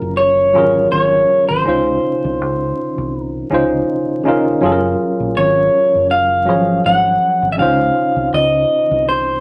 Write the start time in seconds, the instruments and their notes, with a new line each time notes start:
Already playing: tine electric piano F#3 C#4 F4 G#4 A#4, clean electric guitar A#4
0.01 fingered electric bass F#1
0.17 clean electric guitar C#5
0.53 fingered electric bass G#1, tine electric piano F#3 C#4 F4 G#4
0.58 tine electric piano A#4
0.92 fingered electric bass G#1, clean electric guitar C#5
1.49 fingered electric bass G#1, clean electric guitar C5
1.64 fingered electric bass C#2, tine electric piano C#3 C#4 D#4 F4
1.69 tine electric piano C5
2.24 fingered electric bass C2
2.41 fingered electric bass C#2
2.98 fingered electric bass C2
3.22 clean electric guitar A#4
3.50 fingered electric bass C#2, tine electric piano C#3 C#4 D#4 F4
3.54 tine electric piano C5
4.23 tine electric piano C#3 C#4 D#4 F4
4.29 tine electric piano A#4
4.61 fingered electric bass F#1, tine electric piano F#3 C#4 F4 G#4
4.66 tine electric piano A4
4.72 tine electric piano A#4
5.20 fingered electric bass A#1
5.37 fingered electric bass G#1, clean electric guitar C#5
5.95 fingered electric bass F#1
6.11 clean electric guitar F5
6.45 fingered electric bass G#1, tine electric piano F3 F#3 C#4 G#4
6.50 tine electric piano C#5
6.85 fingered electric bass G#1, clean electric guitar F#5
7.42 fingered electric bass G#1
7.52 clean electric guitar E5
7.57 fingered electric bass C#2, tine electric piano C#3 C#4 D#4 F4, clean electric guitar F5
7.62 tine electric piano C5
8.16 fingered electric bass C2
8.33 fingered electric bass C#2, clean electric guitar D#5
8.91 fingered electric bass C2
9.09 clean electric guitar C5